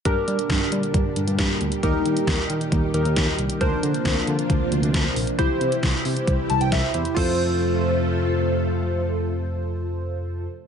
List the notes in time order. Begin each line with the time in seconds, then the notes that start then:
0.05 G2 A#2 D3 G3 D4 G4 A#4, kick, closed hi-hat
0.28 G3, closed hi-hat
0.39 closed hi-hat
0.50 G2, kick, snare, closed hi-hat
0.72 G3, closed hi-hat
0.83 closed hi-hat
0.94 G2, kick, closed hi-hat
1.16 G2, closed hi-hat
1.28 G2, closed hi-hat
1.39 G2, kick, snare, closed hi-hat
1.61 D2, closed hi-hat
1.72 closed hi-hat
1.83 D#2 D#3 D#4 G4 A#4, kick, closed hi-hat
2.05 D#3, closed hi-hat
2.17 closed hi-hat
2.27 D#2, kick, snare, closed hi-hat
2.50 D#3, closed hi-hat
2.61 closed hi-hat
2.72 D#2, kick, closed hi-hat
2.94 D#2 D#4 G4 A#4, closed hi-hat
3.05 D#2, closed hi-hat
3.16 D#2, kick, snare, closed hi-hat
3.39 C2, closed hi-hat
3.50 closed hi-hat
3.61 D2 C3 F3 A#3 D4 F4 A#4 C5, kick, closed hi-hat
3.83 D3, closed hi-hat
3.94 closed hi-hat
4.05 D2, kick, snare, closed hi-hat
4.27 D3, closed hi-hat
4.39 closed hi-hat
4.50 D2, kick, closed hi-hat
4.72 D2, closed hi-hat
4.83 D2, closed hi-hat
4.94 D2, kick, snare, closed hi-hat
5.16 A#1, open hi-hat
5.27 closed hi-hat
5.39 C2 E3 G3 E4 G4 C5, kick, closed hi-hat
5.61 C3, closed hi-hat
5.72 closed hi-hat
5.83 C2, kick, snare, closed hi-hat
6.05 C3, open hi-hat
6.17 closed hi-hat
6.27 C2, kick, closed hi-hat
6.50 C2 A5, closed hi-hat
6.61 C2 G5, closed hi-hat
6.72 C2 E5, kick, snare, closed hi-hat
6.94 E2 E4 G4 C5, closed hi-hat
7.05 closed hi-hat
7.15 F2 C3 F3 A3 F4 A4 C5, kick, crash